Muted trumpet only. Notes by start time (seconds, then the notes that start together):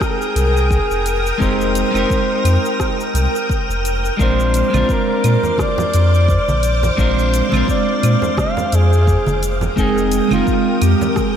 0.01 G#4
1.41 C5
4.22 C5
4.92 A#4
5.61 D5
6.93 D5
7.01 C5
7.70 D5
8.40 F5
8.75 G#4
9.79 G#4
10.33 F4
10.83 G4
11.18 G#4